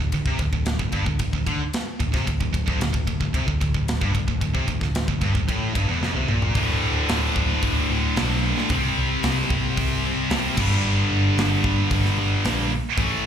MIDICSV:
0, 0, Header, 1, 5, 480
1, 0, Start_track
1, 0, Tempo, 535236
1, 117, Time_signature, 4, 2, 24, 8
1, 11892, End_track
2, 0, Start_track
2, 0, Title_t, "Distorted electric guitar"
2, 0, Program_c, 0, 30
2, 5883, Note_on_c, 0, 38, 92
2, 5892, Note_on_c, 0, 45, 102
2, 5905, Note_on_c, 0, 50, 103
2, 7073, Note_off_c, 0, 38, 0
2, 7078, Note_off_c, 0, 45, 0
2, 7079, Note_off_c, 0, 50, 0
2, 7090, Note_on_c, 0, 50, 99
2, 7103, Note_on_c, 0, 45, 81
2, 7109, Note_on_c, 0, 38, 75
2, 7316, Note_off_c, 0, 50, 0
2, 7323, Note_off_c, 0, 38, 0
2, 7323, Note_off_c, 0, 45, 0
2, 7334, Note_on_c, 0, 38, 86
2, 7349, Note_on_c, 0, 45, 84
2, 7357, Note_on_c, 0, 50, 83
2, 7798, Note_off_c, 0, 38, 0
2, 7805, Note_off_c, 0, 45, 0
2, 7809, Note_off_c, 0, 50, 0
2, 7818, Note_on_c, 0, 48, 92
2, 7826, Note_on_c, 0, 55, 103
2, 7836, Note_on_c, 0, 60, 120
2, 8998, Note_off_c, 0, 48, 0
2, 9002, Note_off_c, 0, 55, 0
2, 9007, Note_off_c, 0, 60, 0
2, 9017, Note_on_c, 0, 60, 87
2, 9030, Note_on_c, 0, 55, 79
2, 9035, Note_on_c, 0, 48, 79
2, 9238, Note_off_c, 0, 60, 0
2, 9244, Note_off_c, 0, 48, 0
2, 9244, Note_off_c, 0, 55, 0
2, 9255, Note_on_c, 0, 48, 82
2, 9266, Note_on_c, 0, 55, 93
2, 9272, Note_on_c, 0, 60, 98
2, 9476, Note_off_c, 0, 48, 0
2, 9482, Note_off_c, 0, 55, 0
2, 9484, Note_on_c, 0, 43, 92
2, 9485, Note_off_c, 0, 60, 0
2, 9493, Note_on_c, 0, 50, 107
2, 9501, Note_on_c, 0, 55, 105
2, 10667, Note_off_c, 0, 43, 0
2, 10672, Note_off_c, 0, 50, 0
2, 10676, Note_off_c, 0, 55, 0
2, 10689, Note_on_c, 0, 43, 68
2, 10698, Note_on_c, 0, 50, 73
2, 10713, Note_on_c, 0, 55, 87
2, 10911, Note_off_c, 0, 43, 0
2, 10915, Note_off_c, 0, 50, 0
2, 10916, Note_off_c, 0, 55, 0
2, 10927, Note_on_c, 0, 55, 99
2, 10938, Note_on_c, 0, 50, 78
2, 10950, Note_on_c, 0, 43, 77
2, 11388, Note_off_c, 0, 55, 0
2, 11394, Note_off_c, 0, 50, 0
2, 11400, Note_off_c, 0, 43, 0
2, 11650, Note_on_c, 0, 45, 84
2, 11666, Note_on_c, 0, 52, 107
2, 11672, Note_on_c, 0, 57, 99
2, 11892, Note_off_c, 0, 45, 0
2, 11892, Note_off_c, 0, 52, 0
2, 11892, Note_off_c, 0, 57, 0
2, 11892, End_track
3, 0, Start_track
3, 0, Title_t, "Distorted electric guitar"
3, 0, Program_c, 1, 30
3, 0, Note_on_c, 1, 38, 69
3, 110, Note_off_c, 1, 38, 0
3, 121, Note_on_c, 1, 38, 63
3, 237, Note_off_c, 1, 38, 0
3, 241, Note_on_c, 1, 48, 82
3, 352, Note_off_c, 1, 48, 0
3, 360, Note_on_c, 1, 38, 68
3, 465, Note_off_c, 1, 38, 0
3, 475, Note_on_c, 1, 38, 68
3, 669, Note_off_c, 1, 38, 0
3, 715, Note_on_c, 1, 38, 57
3, 827, Note_off_c, 1, 38, 0
3, 830, Note_on_c, 1, 43, 96
3, 947, Note_off_c, 1, 43, 0
3, 952, Note_on_c, 1, 38, 64
3, 1062, Note_off_c, 1, 38, 0
3, 1073, Note_on_c, 1, 38, 67
3, 1178, Note_off_c, 1, 38, 0
3, 1189, Note_on_c, 1, 38, 73
3, 1314, Note_off_c, 1, 38, 0
3, 1316, Note_on_c, 1, 50, 92
3, 1431, Note_off_c, 1, 50, 0
3, 1794, Note_on_c, 1, 38, 70
3, 1911, Note_off_c, 1, 38, 0
3, 1915, Note_on_c, 1, 48, 92
3, 2031, Note_off_c, 1, 48, 0
3, 2037, Note_on_c, 1, 38, 74
3, 2159, Note_off_c, 1, 38, 0
3, 2169, Note_on_c, 1, 38, 68
3, 2265, Note_off_c, 1, 38, 0
3, 2275, Note_on_c, 1, 38, 76
3, 2391, Note_off_c, 1, 38, 0
3, 2401, Note_on_c, 1, 38, 97
3, 2513, Note_off_c, 1, 38, 0
3, 2523, Note_on_c, 1, 38, 71
3, 2628, Note_off_c, 1, 38, 0
3, 2639, Note_on_c, 1, 38, 69
3, 2749, Note_off_c, 1, 38, 0
3, 2759, Note_on_c, 1, 38, 63
3, 2876, Note_off_c, 1, 38, 0
3, 2887, Note_on_c, 1, 38, 68
3, 3000, Note_off_c, 1, 38, 0
3, 3004, Note_on_c, 1, 48, 109
3, 3117, Note_off_c, 1, 48, 0
3, 3121, Note_on_c, 1, 38, 69
3, 3227, Note_off_c, 1, 38, 0
3, 3238, Note_on_c, 1, 38, 66
3, 3346, Note_off_c, 1, 38, 0
3, 3356, Note_on_c, 1, 38, 65
3, 3553, Note_off_c, 1, 38, 0
3, 3600, Note_on_c, 1, 43, 103
3, 3705, Note_off_c, 1, 43, 0
3, 3709, Note_on_c, 1, 38, 70
3, 3818, Note_off_c, 1, 38, 0
3, 3829, Note_on_c, 1, 38, 63
3, 3939, Note_off_c, 1, 38, 0
3, 3950, Note_on_c, 1, 38, 69
3, 4066, Note_off_c, 1, 38, 0
3, 4070, Note_on_c, 1, 48, 88
3, 4191, Note_off_c, 1, 48, 0
3, 4194, Note_on_c, 1, 38, 64
3, 4295, Note_off_c, 1, 38, 0
3, 4306, Note_on_c, 1, 38, 67
3, 4509, Note_off_c, 1, 38, 0
3, 4551, Note_on_c, 1, 38, 59
3, 4676, Note_off_c, 1, 38, 0
3, 4680, Note_on_c, 1, 43, 101
3, 4789, Note_off_c, 1, 43, 0
3, 4792, Note_on_c, 1, 38, 70
3, 4909, Note_off_c, 1, 38, 0
3, 4913, Note_on_c, 1, 45, 106
3, 5148, Note_off_c, 1, 45, 0
3, 5152, Note_on_c, 1, 43, 95
3, 5273, Note_off_c, 1, 43, 0
3, 5276, Note_on_c, 1, 40, 94
3, 5393, Note_off_c, 1, 40, 0
3, 5396, Note_on_c, 1, 41, 78
3, 5516, Note_off_c, 1, 41, 0
3, 5524, Note_on_c, 1, 48, 90
3, 5640, Note_off_c, 1, 48, 0
3, 5644, Note_on_c, 1, 46, 91
3, 5881, Note_off_c, 1, 46, 0
3, 5886, Note_on_c, 1, 38, 93
3, 5896, Note_on_c, 1, 45, 98
3, 5908, Note_on_c, 1, 50, 90
3, 7794, Note_off_c, 1, 38, 0
3, 7799, Note_off_c, 1, 45, 0
3, 7805, Note_off_c, 1, 50, 0
3, 7813, Note_on_c, 1, 48, 90
3, 7820, Note_on_c, 1, 55, 105
3, 7827, Note_on_c, 1, 60, 113
3, 9474, Note_off_c, 1, 48, 0
3, 9477, Note_off_c, 1, 55, 0
3, 9481, Note_off_c, 1, 60, 0
3, 9485, Note_on_c, 1, 43, 92
3, 9496, Note_on_c, 1, 50, 96
3, 9505, Note_on_c, 1, 55, 107
3, 11385, Note_off_c, 1, 43, 0
3, 11390, Note_off_c, 1, 50, 0
3, 11395, Note_off_c, 1, 55, 0
3, 11635, Note_on_c, 1, 45, 90
3, 11647, Note_on_c, 1, 52, 103
3, 11652, Note_on_c, 1, 57, 91
3, 11892, Note_off_c, 1, 45, 0
3, 11892, Note_off_c, 1, 52, 0
3, 11892, Note_off_c, 1, 57, 0
3, 11892, End_track
4, 0, Start_track
4, 0, Title_t, "Picked electric bass"
4, 0, Program_c, 2, 34
4, 0, Note_on_c, 2, 26, 74
4, 104, Note_off_c, 2, 26, 0
4, 110, Note_on_c, 2, 26, 72
4, 225, Note_off_c, 2, 26, 0
4, 231, Note_on_c, 2, 36, 83
4, 346, Note_off_c, 2, 36, 0
4, 353, Note_on_c, 2, 26, 74
4, 467, Note_off_c, 2, 26, 0
4, 473, Note_on_c, 2, 26, 82
4, 699, Note_off_c, 2, 26, 0
4, 711, Note_on_c, 2, 26, 81
4, 826, Note_off_c, 2, 26, 0
4, 831, Note_on_c, 2, 31, 78
4, 946, Note_off_c, 2, 31, 0
4, 959, Note_on_c, 2, 26, 79
4, 1071, Note_off_c, 2, 26, 0
4, 1075, Note_on_c, 2, 26, 73
4, 1189, Note_off_c, 2, 26, 0
4, 1195, Note_on_c, 2, 26, 83
4, 1309, Note_off_c, 2, 26, 0
4, 1313, Note_on_c, 2, 38, 82
4, 1428, Note_off_c, 2, 38, 0
4, 1798, Note_on_c, 2, 26, 76
4, 1911, Note_off_c, 2, 26, 0
4, 1919, Note_on_c, 2, 36, 87
4, 2029, Note_off_c, 2, 36, 0
4, 2034, Note_on_c, 2, 26, 74
4, 2149, Note_off_c, 2, 26, 0
4, 2156, Note_on_c, 2, 26, 75
4, 2270, Note_off_c, 2, 26, 0
4, 2278, Note_on_c, 2, 26, 74
4, 2392, Note_off_c, 2, 26, 0
4, 2405, Note_on_c, 2, 26, 97
4, 2513, Note_off_c, 2, 26, 0
4, 2518, Note_on_c, 2, 26, 77
4, 2632, Note_off_c, 2, 26, 0
4, 2641, Note_on_c, 2, 26, 78
4, 2751, Note_off_c, 2, 26, 0
4, 2756, Note_on_c, 2, 26, 66
4, 2869, Note_off_c, 2, 26, 0
4, 2874, Note_on_c, 2, 26, 85
4, 2990, Note_off_c, 2, 26, 0
4, 2997, Note_on_c, 2, 36, 90
4, 3112, Note_off_c, 2, 36, 0
4, 3120, Note_on_c, 2, 26, 80
4, 3234, Note_off_c, 2, 26, 0
4, 3245, Note_on_c, 2, 26, 73
4, 3354, Note_off_c, 2, 26, 0
4, 3359, Note_on_c, 2, 26, 78
4, 3586, Note_off_c, 2, 26, 0
4, 3602, Note_on_c, 2, 31, 92
4, 3709, Note_off_c, 2, 31, 0
4, 3714, Note_on_c, 2, 26, 77
4, 3832, Note_off_c, 2, 26, 0
4, 3842, Note_on_c, 2, 26, 73
4, 3956, Note_off_c, 2, 26, 0
4, 3960, Note_on_c, 2, 26, 70
4, 4075, Note_off_c, 2, 26, 0
4, 4080, Note_on_c, 2, 36, 86
4, 4192, Note_off_c, 2, 36, 0
4, 4198, Note_on_c, 2, 26, 67
4, 4307, Note_off_c, 2, 26, 0
4, 4312, Note_on_c, 2, 26, 78
4, 4543, Note_off_c, 2, 26, 0
4, 4553, Note_on_c, 2, 26, 68
4, 4672, Note_off_c, 2, 26, 0
4, 4680, Note_on_c, 2, 31, 82
4, 4796, Note_off_c, 2, 31, 0
4, 4800, Note_on_c, 2, 26, 69
4, 4914, Note_off_c, 2, 26, 0
4, 4920, Note_on_c, 2, 33, 83
4, 5148, Note_off_c, 2, 33, 0
4, 5162, Note_on_c, 2, 31, 93
4, 5268, Note_off_c, 2, 31, 0
4, 5274, Note_on_c, 2, 28, 88
4, 5388, Note_off_c, 2, 28, 0
4, 5393, Note_on_c, 2, 29, 90
4, 5513, Note_off_c, 2, 29, 0
4, 5520, Note_on_c, 2, 36, 85
4, 5637, Note_off_c, 2, 36, 0
4, 5656, Note_on_c, 2, 34, 82
4, 5871, Note_off_c, 2, 34, 0
4, 5877, Note_on_c, 2, 26, 93
4, 6031, Note_off_c, 2, 26, 0
4, 6129, Note_on_c, 2, 26, 76
4, 6280, Note_off_c, 2, 26, 0
4, 6372, Note_on_c, 2, 26, 97
4, 6522, Note_off_c, 2, 26, 0
4, 6596, Note_on_c, 2, 26, 95
4, 6751, Note_off_c, 2, 26, 0
4, 6837, Note_on_c, 2, 26, 93
4, 6991, Note_off_c, 2, 26, 0
4, 7086, Note_on_c, 2, 26, 89
4, 7238, Note_off_c, 2, 26, 0
4, 7323, Note_on_c, 2, 35, 93
4, 7625, Note_off_c, 2, 35, 0
4, 7801, Note_on_c, 2, 36, 97
4, 7954, Note_off_c, 2, 36, 0
4, 8050, Note_on_c, 2, 36, 79
4, 8200, Note_off_c, 2, 36, 0
4, 8288, Note_on_c, 2, 36, 103
4, 8438, Note_off_c, 2, 36, 0
4, 8524, Note_on_c, 2, 36, 88
4, 8676, Note_off_c, 2, 36, 0
4, 8764, Note_on_c, 2, 36, 91
4, 9065, Note_off_c, 2, 36, 0
4, 9243, Note_on_c, 2, 36, 105
4, 9394, Note_off_c, 2, 36, 0
4, 9484, Note_on_c, 2, 31, 82
4, 9635, Note_off_c, 2, 31, 0
4, 9728, Note_on_c, 2, 31, 90
4, 9877, Note_off_c, 2, 31, 0
4, 9968, Note_on_c, 2, 31, 88
4, 10117, Note_off_c, 2, 31, 0
4, 10205, Note_on_c, 2, 31, 96
4, 10354, Note_off_c, 2, 31, 0
4, 10440, Note_on_c, 2, 31, 87
4, 10591, Note_off_c, 2, 31, 0
4, 10682, Note_on_c, 2, 31, 98
4, 10832, Note_off_c, 2, 31, 0
4, 10918, Note_on_c, 2, 31, 94
4, 11068, Note_off_c, 2, 31, 0
4, 11165, Note_on_c, 2, 34, 98
4, 11462, Note_off_c, 2, 34, 0
4, 11640, Note_on_c, 2, 33, 101
4, 11789, Note_off_c, 2, 33, 0
4, 11892, End_track
5, 0, Start_track
5, 0, Title_t, "Drums"
5, 109, Note_on_c, 9, 51, 85
5, 112, Note_on_c, 9, 36, 80
5, 199, Note_off_c, 9, 51, 0
5, 201, Note_off_c, 9, 36, 0
5, 230, Note_on_c, 9, 36, 79
5, 320, Note_off_c, 9, 36, 0
5, 348, Note_on_c, 9, 51, 70
5, 352, Note_on_c, 9, 36, 81
5, 438, Note_off_c, 9, 51, 0
5, 441, Note_off_c, 9, 36, 0
5, 472, Note_on_c, 9, 36, 77
5, 562, Note_off_c, 9, 36, 0
5, 589, Note_on_c, 9, 51, 87
5, 597, Note_on_c, 9, 38, 105
5, 679, Note_off_c, 9, 51, 0
5, 687, Note_off_c, 9, 38, 0
5, 712, Note_on_c, 9, 36, 97
5, 802, Note_off_c, 9, 36, 0
5, 827, Note_on_c, 9, 51, 64
5, 833, Note_on_c, 9, 36, 77
5, 917, Note_off_c, 9, 51, 0
5, 923, Note_off_c, 9, 36, 0
5, 954, Note_on_c, 9, 36, 71
5, 1043, Note_off_c, 9, 36, 0
5, 1069, Note_on_c, 9, 51, 96
5, 1074, Note_on_c, 9, 36, 92
5, 1158, Note_off_c, 9, 51, 0
5, 1163, Note_off_c, 9, 36, 0
5, 1195, Note_on_c, 9, 36, 71
5, 1284, Note_off_c, 9, 36, 0
5, 1315, Note_on_c, 9, 36, 79
5, 1317, Note_on_c, 9, 51, 74
5, 1404, Note_off_c, 9, 36, 0
5, 1406, Note_off_c, 9, 51, 0
5, 1555, Note_on_c, 9, 51, 93
5, 1563, Note_on_c, 9, 38, 117
5, 1645, Note_off_c, 9, 51, 0
5, 1653, Note_off_c, 9, 38, 0
5, 1795, Note_on_c, 9, 36, 78
5, 1795, Note_on_c, 9, 51, 61
5, 1885, Note_off_c, 9, 36, 0
5, 1885, Note_off_c, 9, 51, 0
5, 1918, Note_on_c, 9, 36, 99
5, 1930, Note_on_c, 9, 38, 35
5, 2008, Note_off_c, 9, 36, 0
5, 2020, Note_off_c, 9, 38, 0
5, 2039, Note_on_c, 9, 36, 83
5, 2041, Note_on_c, 9, 51, 83
5, 2128, Note_off_c, 9, 36, 0
5, 2131, Note_off_c, 9, 51, 0
5, 2158, Note_on_c, 9, 36, 75
5, 2247, Note_off_c, 9, 36, 0
5, 2279, Note_on_c, 9, 36, 81
5, 2282, Note_on_c, 9, 51, 61
5, 2369, Note_off_c, 9, 36, 0
5, 2372, Note_off_c, 9, 51, 0
5, 2400, Note_on_c, 9, 36, 84
5, 2490, Note_off_c, 9, 36, 0
5, 2521, Note_on_c, 9, 51, 102
5, 2529, Note_on_c, 9, 38, 111
5, 2610, Note_off_c, 9, 51, 0
5, 2618, Note_off_c, 9, 38, 0
5, 2637, Note_on_c, 9, 36, 93
5, 2726, Note_off_c, 9, 36, 0
5, 2757, Note_on_c, 9, 36, 76
5, 2760, Note_on_c, 9, 51, 59
5, 2847, Note_off_c, 9, 36, 0
5, 2849, Note_off_c, 9, 51, 0
5, 2876, Note_on_c, 9, 36, 73
5, 2966, Note_off_c, 9, 36, 0
5, 2997, Note_on_c, 9, 36, 92
5, 3000, Note_on_c, 9, 51, 88
5, 3087, Note_off_c, 9, 36, 0
5, 3089, Note_off_c, 9, 51, 0
5, 3120, Note_on_c, 9, 36, 75
5, 3209, Note_off_c, 9, 36, 0
5, 3241, Note_on_c, 9, 36, 85
5, 3247, Note_on_c, 9, 51, 63
5, 3331, Note_off_c, 9, 36, 0
5, 3336, Note_off_c, 9, 51, 0
5, 3358, Note_on_c, 9, 36, 78
5, 3448, Note_off_c, 9, 36, 0
5, 3481, Note_on_c, 9, 51, 84
5, 3489, Note_on_c, 9, 38, 114
5, 3571, Note_off_c, 9, 51, 0
5, 3579, Note_off_c, 9, 38, 0
5, 3601, Note_on_c, 9, 36, 109
5, 3690, Note_off_c, 9, 36, 0
5, 3719, Note_on_c, 9, 36, 71
5, 3723, Note_on_c, 9, 51, 60
5, 3809, Note_off_c, 9, 36, 0
5, 3813, Note_off_c, 9, 51, 0
5, 3838, Note_on_c, 9, 36, 86
5, 3928, Note_off_c, 9, 36, 0
5, 3958, Note_on_c, 9, 36, 77
5, 3961, Note_on_c, 9, 51, 71
5, 4048, Note_off_c, 9, 36, 0
5, 4051, Note_off_c, 9, 51, 0
5, 4077, Note_on_c, 9, 36, 80
5, 4167, Note_off_c, 9, 36, 0
5, 4196, Note_on_c, 9, 36, 82
5, 4199, Note_on_c, 9, 51, 62
5, 4286, Note_off_c, 9, 36, 0
5, 4289, Note_off_c, 9, 51, 0
5, 4316, Note_on_c, 9, 36, 78
5, 4324, Note_on_c, 9, 38, 27
5, 4406, Note_off_c, 9, 36, 0
5, 4414, Note_off_c, 9, 38, 0
5, 4439, Note_on_c, 9, 51, 92
5, 4447, Note_on_c, 9, 38, 107
5, 4529, Note_off_c, 9, 51, 0
5, 4537, Note_off_c, 9, 38, 0
5, 4556, Note_on_c, 9, 36, 88
5, 4646, Note_off_c, 9, 36, 0
5, 4676, Note_on_c, 9, 51, 64
5, 4678, Note_on_c, 9, 36, 86
5, 4766, Note_off_c, 9, 51, 0
5, 4767, Note_off_c, 9, 36, 0
5, 4799, Note_on_c, 9, 36, 72
5, 4888, Note_off_c, 9, 36, 0
5, 4919, Note_on_c, 9, 36, 91
5, 4923, Note_on_c, 9, 51, 86
5, 5009, Note_off_c, 9, 36, 0
5, 5012, Note_off_c, 9, 51, 0
5, 5160, Note_on_c, 9, 36, 112
5, 5164, Note_on_c, 9, 51, 78
5, 5249, Note_off_c, 9, 36, 0
5, 5254, Note_off_c, 9, 51, 0
5, 5406, Note_on_c, 9, 38, 59
5, 5496, Note_off_c, 9, 38, 0
5, 5512, Note_on_c, 9, 48, 61
5, 5602, Note_off_c, 9, 48, 0
5, 5635, Note_on_c, 9, 45, 81
5, 5725, Note_off_c, 9, 45, 0
5, 5760, Note_on_c, 9, 43, 95
5, 5849, Note_off_c, 9, 43, 0
5, 5872, Note_on_c, 9, 46, 57
5, 5876, Note_on_c, 9, 36, 104
5, 5962, Note_off_c, 9, 46, 0
5, 5966, Note_off_c, 9, 36, 0
5, 6356, Note_on_c, 9, 46, 61
5, 6364, Note_on_c, 9, 38, 121
5, 6445, Note_off_c, 9, 46, 0
5, 6453, Note_off_c, 9, 38, 0
5, 6599, Note_on_c, 9, 36, 88
5, 6689, Note_off_c, 9, 36, 0
5, 6837, Note_on_c, 9, 46, 55
5, 6840, Note_on_c, 9, 36, 105
5, 6927, Note_off_c, 9, 46, 0
5, 6930, Note_off_c, 9, 36, 0
5, 7322, Note_on_c, 9, 46, 67
5, 7330, Note_on_c, 9, 38, 127
5, 7412, Note_off_c, 9, 46, 0
5, 7420, Note_off_c, 9, 38, 0
5, 7690, Note_on_c, 9, 38, 40
5, 7780, Note_off_c, 9, 38, 0
5, 7795, Note_on_c, 9, 46, 64
5, 7802, Note_on_c, 9, 36, 117
5, 7885, Note_off_c, 9, 46, 0
5, 7892, Note_off_c, 9, 36, 0
5, 8278, Note_on_c, 9, 46, 67
5, 8287, Note_on_c, 9, 38, 120
5, 8368, Note_off_c, 9, 46, 0
5, 8376, Note_off_c, 9, 38, 0
5, 8523, Note_on_c, 9, 36, 90
5, 8613, Note_off_c, 9, 36, 0
5, 8765, Note_on_c, 9, 36, 103
5, 8766, Note_on_c, 9, 46, 66
5, 8855, Note_off_c, 9, 36, 0
5, 8856, Note_off_c, 9, 46, 0
5, 9239, Note_on_c, 9, 46, 74
5, 9247, Note_on_c, 9, 38, 121
5, 9329, Note_off_c, 9, 46, 0
5, 9337, Note_off_c, 9, 38, 0
5, 9480, Note_on_c, 9, 49, 110
5, 9485, Note_on_c, 9, 36, 106
5, 9570, Note_off_c, 9, 49, 0
5, 9574, Note_off_c, 9, 36, 0
5, 9609, Note_on_c, 9, 38, 36
5, 9699, Note_off_c, 9, 38, 0
5, 10205, Note_on_c, 9, 46, 62
5, 10213, Note_on_c, 9, 38, 107
5, 10295, Note_off_c, 9, 46, 0
5, 10303, Note_off_c, 9, 38, 0
5, 10440, Note_on_c, 9, 36, 82
5, 10530, Note_off_c, 9, 36, 0
5, 10681, Note_on_c, 9, 36, 109
5, 10683, Note_on_c, 9, 46, 66
5, 10771, Note_off_c, 9, 36, 0
5, 10773, Note_off_c, 9, 46, 0
5, 10808, Note_on_c, 9, 38, 31
5, 10897, Note_off_c, 9, 38, 0
5, 11162, Note_on_c, 9, 46, 64
5, 11170, Note_on_c, 9, 38, 108
5, 11252, Note_off_c, 9, 46, 0
5, 11260, Note_off_c, 9, 38, 0
5, 11635, Note_on_c, 9, 46, 57
5, 11637, Note_on_c, 9, 36, 123
5, 11725, Note_off_c, 9, 46, 0
5, 11726, Note_off_c, 9, 36, 0
5, 11892, End_track
0, 0, End_of_file